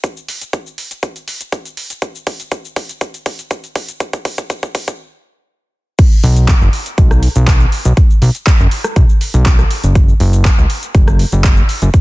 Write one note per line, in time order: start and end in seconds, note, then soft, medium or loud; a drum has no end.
0.04 kick loud
0.04 closed hi-hat medium
0.04 shaker medium
0.17 shaker soft
0.28 open hi-hat loud
0.41 closed hi-hat medium
0.41 shaker medium
0.53 kick loud
0.53 closed hi-hat medium
0.53 shaker medium
0.67 shaker soft
0.78 open hi-hat loud
0.91 closed hi-hat medium
0.91 shaker medium
1.03 kick loud
1.03 closed hi-hat medium
1.03 shaker medium
1.16 closed hi-hat soft
1.16 shaker soft
1.28 open hi-hat loud
1.41 closed hi-hat medium
1.41 shaker medium
1.52 kick loud
1.52 closed hi-hat medium
1.52 shaker medium
1.65 closed hi-hat soft
1.65 shaker soft
1.77 open hi-hat loud
1.90 closed hi-hat medium
1.90 shaker medium
2.02 kick loud
2.02 closed hi-hat medium
2.02 shaker medium
2.15 shaker soft
2.27 kick loud
2.27 open hi-hat loud
2.40 closed hi-hat medium
2.40 shaker medium
2.52 kick loud
2.52 closed hi-hat medium
2.52 shaker medium
2.65 shaker soft
2.76 kick loud
2.76 open hi-hat loud
2.89 closed hi-hat medium
2.89 shaker medium
3.01 kick loud
3.01 closed hi-hat medium
3.01 shaker medium
3.14 closed hi-hat soft
3.14 shaker soft
3.26 kick loud
3.26 open hi-hat loud
3.39 closed hi-hat medium
3.39 shaker medium
3.51 kick loud
3.51 closed hi-hat medium
3.51 shaker medium
3.64 closed hi-hat soft
3.64 shaker soft
3.76 kick loud
3.76 open hi-hat loud
3.89 closed hi-hat medium
3.89 shaker medium
4.00 kick loud
4.00 closed hi-hat medium
4.00 shaker medium
4.13 kick medium
4.13 closed hi-hat soft
4.13 shaker soft
4.25 kick loud
4.25 open hi-hat loud
4.38 kick medium
4.38 closed hi-hat medium
4.38 shaker medium
4.50 kick loud
4.50 closed hi-hat medium
4.50 shaker medium
4.63 kick medium
4.63 shaker soft
4.75 kick loud
4.75 open hi-hat loud
4.88 kick loud
4.88 closed hi-hat medium
4.88 shaker medium
5.99 kick loud
5.99 closed hi-hat medium
5.99 crash loud
5.99 shaker medium
6.12 shaker soft
6.24 6.54 B1 loud
6.24 open hi-hat loud
6.37 closed hi-hat medium
6.37 shaker medium
6.48 kick loud
6.48 clap loud
6.48 closed hi-hat medium
6.48 shaker medium
6.61 6.69 F#1 loud
6.61 shaker soft
6.73 open hi-hat loud
6.86 closed hi-hat medium
6.86 shaker medium
6.98 7.28 B1 medium
6.98 kick loud
6.98 closed hi-hat medium
6.98 shaker medium
7.11 cross-stick medium
7.11 shaker soft
7.23 open hi-hat loud
7.36 7.66 B1 loud
7.36 closed hi-hat medium
7.36 shaker medium
7.47 kick loud
7.47 clap loud
7.47 closed hi-hat medium
7.47 shaker medium
7.60 closed hi-hat soft
7.60 shaker soft
7.72 open hi-hat loud
7.85 7.93 B1 loud
7.85 closed hi-hat medium
7.85 shaker medium
7.97 kick loud
7.97 closed hi-hat medium
7.97 shaker medium
8.10 shaker soft
8.22 8.30 B1 loud
8.22 open hi-hat loud
8.35 closed hi-hat medium
8.35 shaker medium
8.47 kick loud
8.47 clap loud
8.47 closed hi-hat medium
8.47 shaker medium
8.60 8.67 F#1 loud
8.60 shaker soft
8.71 open hi-hat loud
8.84 cross-stick medium
8.84 closed hi-hat medium
8.84 shaker medium
8.96 9.05 B1 medium
8.96 kick loud
8.96 closed hi-hat medium
8.96 shaker medium
9.09 shaker soft
9.21 open hi-hat loud
9.34 9.64 B1 loud
9.34 closed hi-hat medium
9.34 shaker medium
9.46 kick loud
9.46 clap loud
9.46 closed hi-hat medium
9.46 shaker medium
9.59 cross-stick medium
9.59 closed hi-hat soft
9.59 shaker soft
9.71 open hi-hat loud
9.84 10.14 F#1 medium
9.84 closed hi-hat medium
9.84 shaker medium
9.95 kick loud
9.95 closed hi-hat medium
9.95 shaker medium
10.09 shaker soft
10.20 10.51 F#1 loud
10.20 open hi-hat loud
10.33 closed hi-hat medium
10.33 shaker medium
10.45 kick loud
10.45 clap loud
10.45 closed hi-hat medium
10.45 shaker medium
10.58 10.66 C#2 loud
10.58 shaker soft
10.70 open hi-hat loud
10.83 closed hi-hat medium
10.83 shaker medium
10.95 11.25 F#1 medium
10.95 kick loud
10.95 closed hi-hat medium
10.95 shaker medium
11.08 cross-stick medium
11.08 shaker soft
11.19 open hi-hat loud
11.32 11.62 F#1 loud
11.32 closed hi-hat medium
11.32 shaker medium
11.44 kick loud
11.44 clap loud
11.44 closed hi-hat medium
11.44 shaker medium
11.57 closed hi-hat soft
11.57 shaker soft
11.69 open hi-hat loud
11.82 11.90 F#1 loud
11.82 closed hi-hat medium
11.82 shaker medium
11.94 kick loud
11.94 closed hi-hat medium
11.94 shaker medium